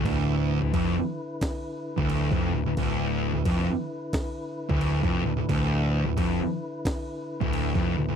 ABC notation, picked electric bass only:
X:1
M:4/4
L:1/16
Q:"Swing" 1/4=88
K:Ddor
V:1 name="Picked electric bass" clef=bass
D,,,3 D,,, F,,, z6 D,,,2 F,,, D,,, D,,, | D,,,3 D,,, F,,, z6 D,,,2 F,,, D,,, D,,, | D,,,3 D,,, F,,, z6 D,,,2 F,,, D,,, D,,, |]